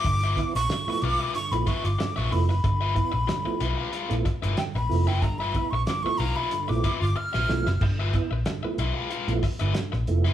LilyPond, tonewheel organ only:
\new Staff \with { instrumentName = "Tonewheel organ" } { \time 4/4 \key g \mixolydian \tempo 4 = 93 <g, d>16 r16 <b e'>16 r16 <g, d>16 <f a b e'>16 <b e'>16 r16 <g, d>16 <f a b e'>16 <b e'>16 r16 <g, d>16 r16 <f a b e'>16 <b e'>16 | <g, d>16 r16 <b e'>16 r16 <g, d>16 <f a b e'>16 <b e'>16 r8 <f a b e'>16 r16 <g, d>16 <g, d>16 r16 <f a b e'>16 <b e'>16 | <g, d>16 r16 <b e'>16 r16 <g, d>16 <f a b e'>16 <b e'>16 r16 <g, d>16 <f a b e'>16 <b e'>16 r8. <f a b e'>16 r16 | <g, d>16 r16 <b e'>16 r16 <g, d>16 <f a b e'>16 <b e'>16 r8 <f a b e'>16 r16 <g, d>16 <g, d>16 r16 <f a b e'>16 <b e'>16 | }